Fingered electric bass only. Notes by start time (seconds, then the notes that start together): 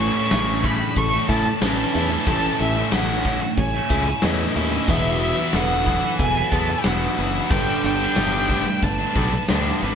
0.32 A1
0.96 A1
1.29 A2
1.62 A1
1.95 E2
2.27 A1
2.61 A1
2.93 A1
3.58 A1
3.90 C#2
4.24 E2
4.56 D#2
4.88 E1
5.54 E1
6.19 E1
6.52 E2
6.85 E1
7.19 F#1
7.51 G1
7.84 G1
8.16 G1
8.83 G1
9.16 B1
9.49 D2
9.82 G#1